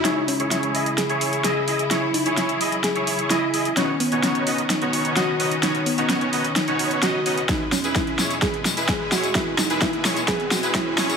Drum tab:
HH |x-oxxxoxxxoxx-ox|x-oxxxoxxxoxx-ox|x-oxxxoxxxoxx-ox|xxoxxxoxxxoxx-ox|
TB |----------------|----------------|----------------|----------------|
SD |o---o---o---o---|o---o---o---o---|o---o---o---o---|o---o---o---o---|
BD |----------------|----------------|----------------|----------------|

HH |x-oxxxoxxxoxx-ox|x-oxxxoxxxoxx-ox|
TB |x-xxx-xxx-xxx-xx|x-xxx-xxx-xxx-xx|
SD |o-o-o-o-o-o-o-o-|o-o-o-o-o-o-o-o-|
BD |o---o---o---o---|o---o---o---o---|